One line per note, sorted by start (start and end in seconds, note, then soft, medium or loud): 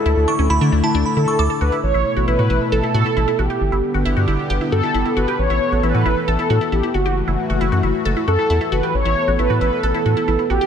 0.00 0.68 A4 medium
0.05 0.15 D2 loud
0.05 1.81 D3 medium
0.05 1.81 A3 medium
0.05 1.82 E4 medium
0.05 0.21 E4 loud
0.17 0.26 D2 loud
0.28 0.35 D4 medium
0.28 0.34 C#6 medium
0.39 0.48 D2 loud
0.39 0.46 C#4 medium
0.50 0.59 D2 loud
0.50 0.57 E4 medium
0.50 0.56 B5 medium
0.61 0.71 D3 loud
0.61 0.69 D4 medium
0.72 0.82 D2 loud
0.72 0.80 D4 medium
0.84 0.91 E4 medium
0.84 0.90 A5 medium
0.94 1.04 D2 loud
0.94 1.10 D4 medium
1.06 1.12 B5 medium
1.17 1.26 D3 loud
1.17 1.32 E4 medium
1.17 1.63 A4 loud
1.28 1.34 C#6 medium
1.39 1.48 D2 medium
1.39 1.46 A4 medium
1.39 1.70 D6 medium
1.50 1.57 A4 medium
1.61 1.71 D2 medium
1.61 1.69 F#4 medium
1.61 1.71 B4 loud
1.72 1.80 E4 medium
1.83 1.93 A1 loud
1.83 3.59 B2 medium
1.83 3.59 A3 medium
1.83 3.59 E4 medium
1.83 2.29 C#5 loud
1.94 2.04 A1 medium
1.94 2.09 E4 medium
2.17 2.26 A1 loud
2.17 2.24 F#4 medium
2.28 2.37 A1 loud
2.28 2.35 E4 medium
2.28 2.69 B4 loud
2.39 2.48 A2 loud
2.39 2.46 F#4 medium
2.50 2.59 A1 loud
2.50 2.65 E4 medium
2.72 2.82 A1 loud
2.72 2.93 A4 loud
2.72 2.80 A4 medium
2.83 2.91 E4 medium
2.94 3.04 A2 loud
2.94 3.02 F#4 medium
2.94 3.40 A4 loud
3.06 3.13 E4 medium
3.17 3.26 A1 medium
3.17 3.24 E4 medium
3.28 3.35 E4 medium
3.39 3.48 A1 medium
3.39 3.46 F#4 medium
3.39 4.01 G4 medium
3.50 3.57 G4 medium
3.61 3.71 G1 loud
3.61 5.37 D3 medium
3.61 6.91 B3 medium
3.61 5.37 G4 medium
3.72 3.82 G1 medium
3.72 3.87 E4 medium
3.94 4.04 G1 medium
3.94 4.02 F#4 medium
4.05 4.15 G1 loud
4.05 4.13 E4 medium
4.17 4.26 G2 medium
4.17 4.24 F#4 medium
4.28 4.37 G1 loud
4.28 4.43 E4 medium
4.50 4.59 G1 medium
4.50 4.57 G4 medium
4.61 4.69 E4 medium
4.72 4.82 G2 loud
4.72 4.80 F#4 medium
4.72 5.18 A4 loud
4.83 4.91 E4 medium
4.94 5.04 G1 medium
4.94 5.02 E4 medium
5.05 5.13 E4 medium
5.16 5.26 G1 medium
5.16 5.24 F#4 medium
5.16 5.39 B4 loud
5.28 5.35 G4 medium
5.39 5.48 A1 loud
5.39 6.93 E3 medium
5.39 6.93 A4 medium
5.39 5.85 C#5 loud
5.50 5.59 A1 medium
5.50 5.65 E4 medium
5.72 5.82 A1 medium
5.72 5.80 F#4 medium
5.83 5.93 A1 loud
5.83 5.91 E4 medium
5.83 6.29 B4 loud
5.94 6.04 A2 loud
5.94 6.02 F#4 medium
6.06 6.15 A1 loud
6.06 6.21 E4 medium
6.27 6.37 A1 loud
6.27 6.49 A4 loud
6.27 6.35 A4 medium
6.39 6.46 E4 medium
6.50 6.59 A2 loud
6.50 6.57 F#4 medium
6.50 6.73 A4 loud
6.61 6.69 E4 medium
6.72 6.82 A1 medium
6.72 6.80 E4 medium
6.72 6.95 G4 medium
6.83 6.91 E4 medium
6.94 7.23 F#1 loud
6.94 10.66 E3 medium
6.94 8.92 A3 medium
6.94 7.02 F#4 medium
6.94 8.92 F#4 medium
6.94 7.57 F#4 medium
7.06 7.13 G4 medium
7.28 7.37 F#1 medium
7.28 7.43 E4 medium
7.50 7.59 F#1 loud
7.50 7.57 F#4 medium
7.61 7.71 F#1 loud
7.61 7.68 E4 medium
7.72 7.82 F#2 medium
7.72 7.80 F#4 medium
7.83 7.93 F#1 medium
7.83 7.98 E4 medium
8.05 8.15 F#1 loud
8.05 8.13 A4 medium
8.17 8.24 E4 medium
8.28 8.37 F#2 loud
8.28 8.35 F#4 medium
8.28 8.74 A4 loud
8.39 8.46 E4 medium
8.50 8.59 E2 medium
8.50 8.57 E4 medium
8.61 8.68 E4 medium
8.72 8.82 F#1 medium
8.72 8.80 F#4 medium
8.72 8.95 B4 loud
8.83 8.91 G4 medium
8.94 9.04 A1 loud
8.94 10.66 B3 medium
8.94 10.66 A4 medium
8.94 9.40 C#5 loud
9.05 9.15 A1 medium
9.05 9.20 E4 medium
9.28 9.37 A1 medium
9.28 9.35 F#4 medium
9.39 9.48 A1 loud
9.39 9.46 E4 medium
9.39 9.60 B4 loud
9.50 9.59 A2 medium
9.50 9.57 F#4 medium
9.61 9.71 A1 loud
9.61 9.76 E4 medium
9.61 9.84 B4 loud
9.83 9.93 A1 loud
9.83 9.91 A4 medium
9.83 10.04 A4 loud
9.94 10.02 E4 medium
10.06 10.15 A2 loud
10.06 10.13 F#4 medium
10.06 10.47 A4 loud
10.17 10.24 E4 medium
10.28 10.37 A1 medium
10.28 10.35 E4 medium
10.39 10.46 E4 medium
10.50 10.59 A1 medium
10.50 10.58 F#4 medium
10.50 10.66 G4 medium
10.61 10.66 G4 medium